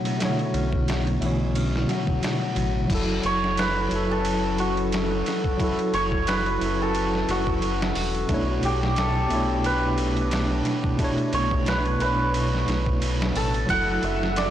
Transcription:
Already playing: tine electric piano B2 A3 E4 C#5, harp C#3 F#3 F#4, ambient pad A3 B3
0.05 ride
0.18 tine electric piano B2 D3 A3, harp F#4, ride
0.22 tine electric piano E4 C#5, snare
0.39 ride
0.53 analog synth bass B1, harp C#4, ride
0.73 kick
0.87 harp F#3, snare, ride
1.07 ride
1.19 analog synth bass B1, tine electric piano B2 D3 A3, harp E3, ride
1.24 tine electric piano E4 C#5
1.55 harp C#4, ride
1.76 snare
1.88 harp F#3, snare, ride
2.07 kick
2.22 harp F#3, snare, ride
2.56 analog synth bass A1, harp F#3, ride
2.87 analog synth bass F#1, tine electric piano F#3 E4, ambient pad F#3 C#4 E4 A4, kick, crash, ride
2.95 tine electric piano A4
3.23 analog synth bass F#1, hammered dulcimer C#5, ride
3.44 snare
3.57 hammered dulcimer B4, snare, ride
3.89 analog synth bass F#1, tine electric piano F#3 E4, ride
3.96 tine electric piano A4
4.11 hammered dulcimer A4
4.25 ride
4.58 hammered dulcimer F#4, ride
4.77 ride
4.92 snare, ride
5.26 snare, ride
5.44 kick
5.57 tine electric piano F#3 E4, kick, ride
5.64 tine electric piano A4
5.79 ride
5.93 analog synth bass F#1, hammered dulcimer C#5, ride
6.12 kick
6.27 hammered dulcimer B4, snare, ride
6.46 ride
6.58 analog synth bass F#1, tine electric piano F#3 E4, ride
6.66 tine electric piano A4
6.82 hammered dulcimer A4
6.95 ride
7.15 snare
7.28 analog synth bass F#1, hammered dulcimer F#4, snare, ride
7.47 kick
7.62 ride
7.82 snare
7.95 analog synth bass E1, open hi-hat
8.14 ride
8.27 analog synth bass B1, tine electric piano B2 A3 D4, ambient pad A3 B3 D4, kick, ride
8.32 tine electric piano E4 C#5
8.63 analog synth bass B1, hammered dulcimer G4, ride
8.83 snare
8.96 hammered dulcimer A4, snare, ride
9.28 analog synth bass B1, tine electric piano B2 A3 D4, ride
9.34 tine electric piano E4 C#5
9.64 hammered dulcimer B4, ride
9.98 ride
10.17 ride
10.31 snare, ride
10.65 snare, ride
10.84 kick
10.97 tine electric piano B2 A3 D4, kick, ride
11.02 tine electric piano E4 C#5
11.18 ride
11.33 analog synth bass B1, hammered dulcimer C#5, ride
11.51 kick
11.66 hammered dulcimer B4, snare, ride
11.85 ride
11.98 analog synth bass B1, tine electric piano B2 A3 D4, hammered dulcimer B4, ride
12.03 tine electric piano E4 C#5
12.34 ride
12.55 snare
12.68 analog synth bass B1, snare, ride
12.86 kick
13.02 ride
13.22 snare
13.36 analog synth bass A1, hammered dulcimer A4, open hi-hat
13.54 ride
13.66 analog synth bass F#1, ambient pad C#3 F#3 E4 A4, tine electric piano F#3 E4, synth texture F#3 F#4, hammered dulcimer F#5, kick, ride
13.74 tine electric piano A4
14.03 analog synth bass F#1, hammered dulcimer E5, ride
14.23 snare
14.36 hammered dulcimer D5, snare, ride

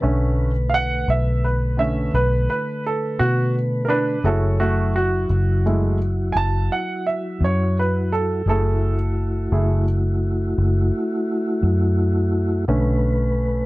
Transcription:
0.00 fingered electric bass B1, tonewheel organ D3 A3 B4, upright piano D3 A3 C#4
0.70 upright piano F5
0.74 upright piano F#5
1.08 fingered electric bass B1, upright piano E5
1.44 upright piano B4
1.77 upright piano D3 A3 C#4 E5
2.14 fingered electric bass B1, upright piano B4
2.50 upright piano B4
2.86 upright piano A4
3.19 fingered electric bass B2, upright piano F#4
3.85 upright piano D4 A#4
3.90 upright piano B4
4.24 fingered electric bass F#1, tonewheel organ F#3 E4 C#5, upright piano A3 E4 F#4 G#4 A4
4.59 tonewheel organ F#3 E4 F#4, upright piano A3 F#4
4.96 upright piano F#4
5.30 fingered electric bass F#1
5.66 upright piano G#3 A3 E4
6.32 fingered electric bass F#1, upright piano G#5
6.37 upright piano A5
6.72 upright piano F#5
7.07 upright piano E5
7.40 fingered electric bass F#2, upright piano C#5
7.79 upright piano B4
8.12 upright piano A4
8.46 fingered electric bass F#1, upright piano A3 E4 G#4 A4, tonewheel organ A3 E4 F#4
9.52 fingered electric bass F#1, upright piano A3 E4 G#4
10.58 fingered electric bass F#1
11.63 fingered electric bass F#2
12.68 fingered electric bass B1, upright piano D3 A3 C#4, tonewheel organ A3 B4

